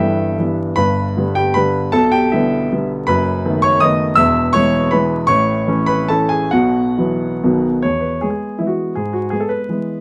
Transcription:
grand piano
Already playing: G1 G2 G4 E5 G5
0.00 E3 G3 B3 E4
0.39 E3 G3 B3
0.76 G1 G2 B4 B5
1.17 D3 G3 B3
1.35 G4 G5
1.54 D3 G3 B3 B4 B5
1.92 B1 B2 A4 A5
2.12 G4 G5
2.32 D3 G3 B3 E4 E5
2.72 D3 G3 B3
3.07 F#1 F#2 B4 B5
3.45 D#3 A3 B3
3.62 C#5 C#6
3.80 D#3 A3 B3 D#5 D#6
4.15 E1 E2 E5 E6
4.53 E3 G#3 B3 C#5 C#6
4.91 E3 G#3 B3 B4 B5
5.27 A1 A2 C#5 C#6
5.67 E3 A3 C#4
5.86 B4 B5
6.08 E3 A3 C#4 A4 A5
6.29 G#4 G#5
6.51 B1 B2 F#4 F#5
6.98 E3 F#3 B3
7.43 B1 B2 D#3 F#3 B3
7.82 E2 C#5
8.00 B4
8.21 G#3 B3 G#4
8.30 G#4
8.58 E3 G#3 B3 E4
8.67 F#4
8.95 G#2 G#4
9.13 F#4
9.30 G#3 B3 G#4
9.40 A4
9.49 B4
9.69 E3 G#3 B3

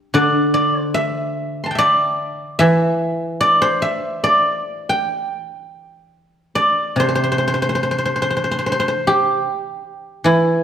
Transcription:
guzheng
Already playing: G4
0.14 D3 D5
0.54 D5
0.79 C5
0.94 E5
1.64 A5 C6
1.71 G5
1.75 D5 E5
2.59 E3 E5
3.41 D5
3.62 C5
3.82 E5
4.24 D5
4.89 G5
6.55 D5
6.96 C3 C5
7.09 C5
7.15 C5
7.24 C5
7.32 C5
7.38 C5
7.48 C5
7.54 C5
7.62 C5
7.69 C5
7.75 C5
7.83 C5
7.91 C5
7.98 C5
8.05 C5
8.16 C5
8.22 C5
8.30 C5
8.37 C5
8.44 C5
8.51 C5
8.59 C5
8.66 C5
8.72 C5
8.80 C5
8.88 C5
9.07 G4
10.24 E3 E4

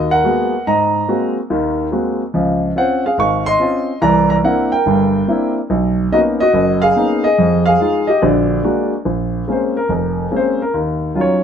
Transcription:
grand piano
Already playing: D#2 D#5
0.11 A#4 F#5
0.24 G#3 A#3 B3 F#4
0.67 G#2 D#5 A#5
1.08 G#3 A#3 C4 F#4
1.50 D#2 D#3
1.92 G#3 A#3 C4 F#4
2.34 C#2 F3
2.76 C4 C#4 F4 C5 F#5
3.06 G#4 F5
3.18 G#1 F5 C#6
3.46 D#5 C6
3.60 C4 C#4 F4
4.02 C2 E3 D5 A#5
4.30 D5 A#5
4.43 A#3 C4 D4 E4 A#4 F#5
4.72 A#4 G5
4.86 G1 G2
5.28 A#3 C4 D4 E4
5.70 B1
6.12 A#3 B3 C#4 D#4 F#4 D#5
6.40 F#4 D#5
6.53 F#1
6.82 G#4 F5
6.96 A#3 B3 C#4 D#4
7.24 G#4 D#5
7.38 F2
7.66 G#4 F5
7.80 G#3 D#4 F4
8.07 G4 D#5
8.22 A#1 D3 F#4 D5
8.64 G#3 A#3 D4 F#4
9.05 A#1
9.47 G#3 A#3 C4 C#4
9.52 C5
9.77 A#4
9.89 F1
9.94 A#4
10.31 G#3 A#3 C4 C#4
10.36 C5
10.62 A#4
10.74 D#2
11.15 F#3 C#4 D#4 F4
11.21 C#5

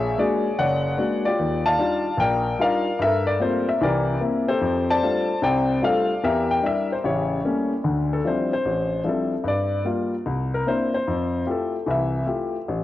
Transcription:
grand piano
Already playing: A#1 G#4 C#5 E5
0.18 G#3 A#3 D4 F#4 G#4 D5
0.59 F#1 C#5 D5 F#5
0.98 G#3 A#3 D4 F#4
1.25 F4 G4 D5
1.39 D#2
1.66 D5 F5 A5
1.79 G3 D4 D#4 F4
2.17 A#1 A#4 D5 G5
2.59 G3 D4 D#4 F4 D5 F5
2.63 A#4
2.99 G2 A4 A#4 E5
3.27 D5
3.39 G3 A3 A#3 C4 F4 C5
3.69 E5
3.81 C2 E3 G4 A#4 D5
4.21 A#3 C4 E4
4.48 G4 A4 C5
4.61 F2
4.90 C5 D5 A5
5.03 G3 A3 D4 F4
5.42 C2 C3 C5 D5 G5
5.82 G3 A3 D4 F4 A4 D5 F5
6.23 E2 G4 A#4 E5
6.51 G5
6.63 G3 D4 E4 E5
6.92 C5
7.04 A1 C#3 E4 G4 C#5
7.45 G3 A3 A#3 C#4
7.84 D2 D3
8.13 A4
8.25 F3 G3 C4 D4 E4 C5
8.53 C5
8.65 A1
9.04 F3 G3 C4 D4 E4 G#4
9.08 A4
9.44 G2
9.48 D5
9.85 G3 A#3 F4
10.26 C2
10.54 A#4
10.66 A#3 C4 D4 E4 C5
10.94 C5
11.07 F2
11.46 A3 E4 F4 G4
11.51 A4
11.86 C2 E3
11.90 E5
12.26 A3 E4 F4 G4
12.68 A1

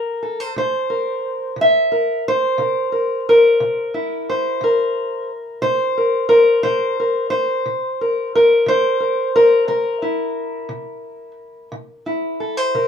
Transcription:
steel-string acoustic guitar
Already playing: C3 A#4
0.23 A4
0.40 C5
0.51 A4
0.56 C3 C5
0.90 A#4
1.56 C3
1.61 E5
1.92 A#4
2.28 C5
2.58 C3 A#4
2.92 A#4
3.29 A#4
3.60 C3
3.94 E4
4.30 C5
4.61 C3 A#4
5.62 C3 C5
5.98 A#4
6.29 A#4
6.63 C3 C5
7.00 A#4
7.30 C5
7.66 C3
8.01 A#4
8.35 A#4
8.66 C3 C5
9.00 A#4
9.36 A#4
9.68 C3 A#4
10.02 E4
10.69 C3
11.72 C3
12.06 E4
12.40 A4
12.57 C5
12.75 C3 A#4

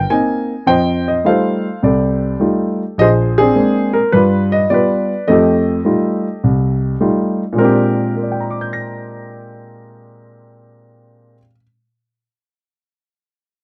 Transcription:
grand piano
Already playing: A#4 G5
0.10 A#3 C4 D#4 D#5 G#5
0.66 F2 C5 D#5 G5
1.08 D#5
1.24 G3 A3 D#4 F4 A4 C5 F5
1.83 C2 G4 A4 D5
2.40 G3 A3 D#4 F4
2.98 A#1 G#4 C5 D#5
3.38 C4 D4 G#4
3.56 G#3 A#3 C4 D4
3.93 A#4
4.12 G2 D4 F4 B4
4.52 D#5
4.70 G3 B3 F4 B4 D5
5.28 F2 A3 A4 D#5
5.32 G4
5.85 G3 A3 D#4 F4
6.44 C2
7.00 G3 A3 D#4 F4
7.53 A#2 G#3
7.58 C4 D4 A#4
7.64 G4
8.16 A#4
8.23 D5
8.32 G5
8.41 A#5
8.51 D6
8.61 G6
8.73 A#6

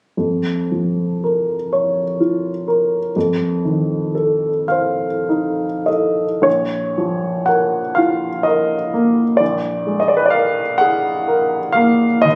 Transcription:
grand piano
0.17 F2
0.71 F3
1.24 A#4
1.73 C#5
2.21 F4
2.68 A#4
3.16 F2
3.65 D#3
4.15 A4
4.68 C5 F5
5.29 D#4
5.86 A4 D#5
6.42 A#1 C#5
6.98 F3
7.46 A#4 F#5
7.95 F4 F5
8.43 A#4 D#5
8.94 A#3
9.37 A#1 D5
9.87 G#3
10.00 D#5
10.08 D5
10.17 B4
10.26 D5
10.30 A#4 F5
10.78 G#4 F#5
11.28 A#4
11.72 A#3 F5
12.22 D#2 D#5

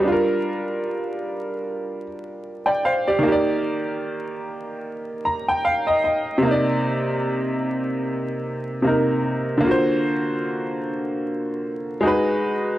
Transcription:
upright piano
0.00 G3 D4
0.08 F4
0.12 A#4
2.66 D5 G5
2.85 C5 F5
3.08 G4 D5
3.19 D#3
3.23 A#3
3.28 G4
3.32 D5
5.25 A#5
5.48 G5
5.65 F5
5.87 D#5
6.04 D#5
6.38 C3
6.42 A#3
6.47 D#4
6.51 D5
8.82 C3 A#3
8.87 D#4 A#4
9.57 D3 A#3
9.64 F4 F#4
9.71 C5
12.01 G#3 D#4
12.05 F#4 B4

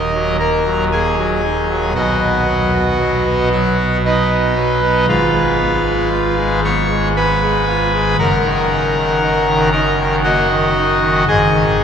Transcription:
pipe organ
Already playing: D#1 D#2 D#4 A#4 D#5
0.14 F#3
0.39 A#3 A#4 A#5
0.65 F#3
0.92 A#3 G#4 G#5
1.18 F#3
1.43 D#4
1.69 F#3
1.95 B1 B2 F#4 D#5 F#5
2.21 B3
2.47 F#3
2.75 B3
3.00 F#3
3.26 B3
3.52 F#3 F#4 F#5
3.78 B3
4.05 D#4 B4 D#5
4.31 B3
4.56 F#3
4.82 B3
5.08 G#1 G#2 F4 B4 F5
5.34 G#3
5.59 B3
5.86 G#3
6.11 F4
6.38 G#3
6.64 B3 C#5 C#6
6.90 G#3
7.16 B3 B4 G#5 B5
7.42 G#3
7.68 F4
7.94 G#3
8.18 F#1 F#2 A#4 F#5 A#5
8.45 D#3
8.71 D#4
8.97 D#3
9.22 D#4
9.47 D#3
9.72 D#4 A#4 A#5
9.99 D#3
10.24 A#3 F#4 D#5 F#5
10.49 D#3
10.75 D#4
11.01 D#3
11.28 G#1 G#2 G#4 D#5 G#5
11.53 D#3
11.79 D#4

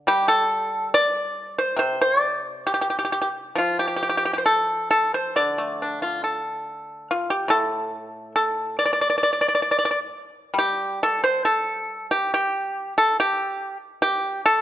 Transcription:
pipa
Already playing: D3
0.07 G3 G4
0.28 A4
0.94 D5
1.58 C5
1.77 C3 C5
2.01 C5
2.19 D5
2.67 G4
2.74 G4
2.81 G4
2.90 G4
2.99 G4
3.05 G4
3.12 G4
3.21 G4
3.55 F3 F4
3.79 G4
3.88 G4
3.96 G4
4.03 G4
4.09 G4
4.17 G4
4.25 G4
4.33 G4
4.38 C5
4.46 A4
4.91 A4
5.14 C5
5.36 D3 D5
5.58 A3
5.82 D4
6.02 F4
6.24 A4
7.11 F4
7.30 G4
7.48 A2 A4
8.36 A4
8.79 D5
8.85 D5
8.93 D5
9.01 D5
9.10 D5
9.18 D5
9.23 D5
9.33 D5
9.41 D5
9.48 D5
9.55 D5
9.62 D5
9.71 D5
9.79 D5
9.85 D5
9.91 D5
10.54 G3
10.58 G4
11.03 A4
11.24 C5
11.45 A4
12.11 G4
12.34 G4
12.98 A4
13.20 G4
14.02 G4
14.46 A4

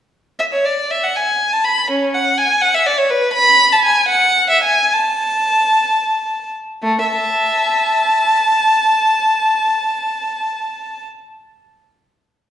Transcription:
violin
0.39 E5
0.53 C#5
0.65 D5
0.90 E5
1.04 F#5
1.16 G#5
1.52 A5
1.64 B5
1.91 C#4
2.15 F#5
2.38 G#5
2.61 F#5
2.75 E5
2.86 D5
2.98 C#5
3.10 B4
3.34 B5
3.72 A5
3.85 G#5
4.09 F#5
4.50 E5
4.64 G#5
4.93 A5
6.83 A3
7.04 E5 A5

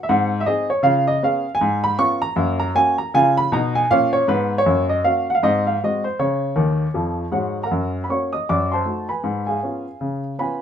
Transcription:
grand piano
0.03 E5
0.09 G#2 C4 F#5
0.40 E5
0.46 C4 D#4 G#4 D#5
0.70 C#5
0.83 C#3 F4 F5
1.07 D#5
1.23 B3 C#4 G#4 F5
1.55 G#5
1.61 G#2
1.84 B5
1.98 B3 C#4 F4 C#6
2.22 A#5
2.36 F#2 A#3
2.60 A#5
2.75 A#3 C#4 F#4 G#5
2.98 A#5
3.14 C#3 F4 G#5
3.37 B5
3.52 B2 D#4 A#5
3.75 G#5
3.90 A#2 C#4 F5
4.13 C#5
4.28 G#2 B3 B4
4.58 C#5
4.66 F#2 A#3
4.89 D#5
5.04 A#3 C#4 F#4 F5
5.30 F#5
5.35 F5
5.43 G#2 C4 D#5
5.67 F5
5.83 G#3 C4 F#4 D#5
6.04 C5
6.19 C#3 C#5
6.56 D#2 D#3
6.94 F2 F3
7.32 G#2 G#3 F#4 C#5 F#5
7.63 A#4 F#5 A#5
7.71 F#2
8.04 B5
8.10 A#3 C#4 F#4 C#5 C#6
8.33 D#5 D#6
8.49 F#2 D5 D6
8.72 C5 A5 C6
8.85 A3 D#4 F#4
9.09 B4 G#5 B5
9.24 G#2
9.47 G#4 F5 G#5
9.63 B3 C#4 F4
10.01 C#3
10.39 B3 C#4 F4 B4 G#5 B5

